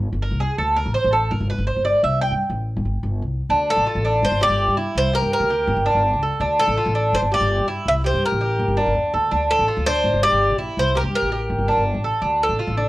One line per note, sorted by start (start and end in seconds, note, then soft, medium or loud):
0.00 0.12 G1 medium
0.13 0.30 G1 medium
0.22 0.40 A#4 medium
0.31 0.49 C2 medium
0.40 0.58 G#4 medium
0.58 0.84 D2 medium
0.58 0.76 A4 medium
0.76 0.94 A#4 medium
0.86 0.95 A1 medium
0.94 1.12 C5 loud
1.04 1.30 A1 medium
1.13 1.31 A4 medium
1.31 1.40 G1 loud
1.31 1.49 A#4 medium
1.40 1.58 G1 medium
1.50 1.66 B4 medium
1.58 1.76 G1 medium
1.67 1.84 C5 medium
1.76 1.94 G1 medium
1.85 2.03 D5 medium
2.03 2.30 C2 medium
2.03 2.21 E5 medium
2.21 2.33 G5 loud
2.31 2.40 G2 medium
2.50 2.76 A1 medium
2.76 2.84 G1 loud
2.85 3.02 G1 medium
3.03 3.21 G1 medium
3.22 3.40 C2 medium
3.49 3.75 D2 medium
3.49 3.85 D4 medium
3.70 4.20 A4 medium
3.76 3.85 A1 medium
3.86 4.04 F4 medium
3.95 4.21 A1 medium
4.05 4.40 D4 medium
4.22 4.31 G1 loud
4.22 4.42 C5 medium
4.31 4.49 G1 medium
4.41 4.76 G4 medium
4.41 4.76 D5 loud
4.49 4.67 G1 medium
4.68 4.85 G2 medium
4.77 5.12 E4 medium
4.95 5.21 C2 medium
4.95 5.15 C5 loud
5.14 5.49 G4 medium
5.14 5.31 A#4 medium
5.22 5.31 G2 medium
5.33 6.01 A#4 medium
5.40 5.66 D2 medium
5.50 5.85 G4 medium
5.68 5.76 G1 loud
5.77 5.94 G1 medium
5.86 6.21 D4 medium
5.95 6.12 G1 medium
6.13 6.31 C#2 medium
6.23 6.40 A4 medium
6.40 6.66 D2 medium
6.40 6.76 D4 medium
6.60 7.15 A4 medium
6.68 6.76 A1 medium
6.78 6.95 F4 medium
6.86 7.12 A1 medium
6.95 7.30 D4 medium
7.13 7.22 G1 medium
7.13 7.20 C5 medium
7.22 7.39 G1 medium
7.32 7.67 G4 medium
7.32 7.67 D5 loud
7.41 7.58 G1 medium
7.59 7.76 G2 medium
7.68 8.03 E4 medium
7.86 8.12 C2 medium
7.86 7.93 E5 loud
8.04 8.39 G4 medium
8.04 8.22 C5 medium
8.14 8.22 G2 medium
8.25 8.93 A#4 medium
8.32 8.58 A1 medium
8.41 8.76 G4 medium
8.59 8.68 G1 medium
8.68 8.85 G1 medium
8.77 9.12 D4 medium
8.86 8.94 G1 medium
8.95 9.11 E2 medium
9.14 9.30 D2 medium
9.14 9.31 A4 medium
9.31 9.58 D2 medium
9.31 9.67 D4 medium
9.51 9.84 A4 medium
9.59 9.68 A1 medium
9.68 9.86 F4 medium
9.77 10.03 D2 medium
9.86 10.22 D4 medium
9.86 10.23 C5 loud
10.04 10.13 G1 medium
10.14 10.31 G1 medium
10.23 10.58 G4 medium
10.23 10.56 D5 loud
10.32 10.49 G1 medium
10.50 10.67 A#1 medium
10.59 10.94 E4 medium
10.77 11.03 C2 medium
10.77 10.95 C5 loud
10.95 11.30 G4 medium
10.95 11.02 A#4 medium
11.04 11.13 G2 medium
11.15 11.83 A#4 medium
11.22 11.48 A1 medium
11.32 11.67 G4 medium
11.50 11.58 G1 loud
11.59 11.76 G1 medium
11.68 12.03 D4 medium
11.77 11.94 G1 medium
11.95 12.12 A1 medium
12.04 12.22 A4 medium
12.22 12.48 D2 medium
12.22 12.57 D4 medium
12.43 12.89 A4 medium
12.49 12.58 A1 medium
12.59 12.77 F4 medium
12.67 12.89 A1 loud
12.77 12.89 D4 medium